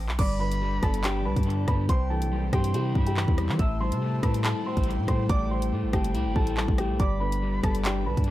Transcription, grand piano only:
0.19 D5 D6
0.40 B4 B5
0.83 A4 A5
1.04 G4 G5
1.25 B4 B5
1.68 B4 B5
1.90 C5 C6
2.10 A4 A5
2.53 G4 G5
2.74 G4 G5
3.07 G4 G5
3.60 E5 E6
3.81 C5 C6
4.23 B4 B5
4.44 A4 A5
4.66 C5 C6
5.08 C5 C6
5.30 D5 D6
5.51 C5 C6
5.93 G4 G5
6.36 A4 A5
6.57 A4 A5
6.79 G4 G5
7.00 D5 D6
7.20 B4 B5
7.64 A4 A5
7.85 G4 G5
8.06 B4 B5

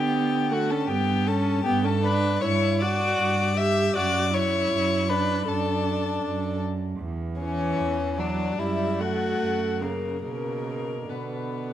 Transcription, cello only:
Already playing: D3
0.90 G2
1.66 G2
2.43 G2
3.19 G2
3.94 F#2
4.71 F#2
5.47 F#2
6.24 F#2
6.99 E2
7.79 E2
8.57 F#2
9.39 F#2
10.23 B2
11.08 B2

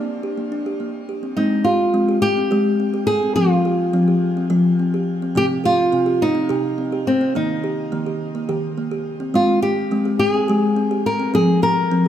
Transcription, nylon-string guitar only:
Already playing: D4
1.37 D#4
1.64 F4
2.22 G4
3.07 G#4
3.36 F4
5.37 G4
5.65 F4
6.22 D#4
7.07 C4
7.36 D#4
9.35 F4
9.62 G4
10.19 G4
10.30 G#4
11.06 A#4
11.35 G#4
11.63 A#4

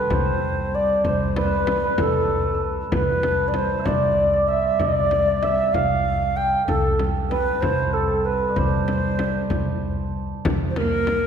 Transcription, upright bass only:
0.10 C2
1.05 C2
1.99 C2
2.93 C2
3.87 C2
4.80 C2
5.74 C2
6.69 C2
7.63 C2
8.57 C2
9.51 C2
10.45 C2

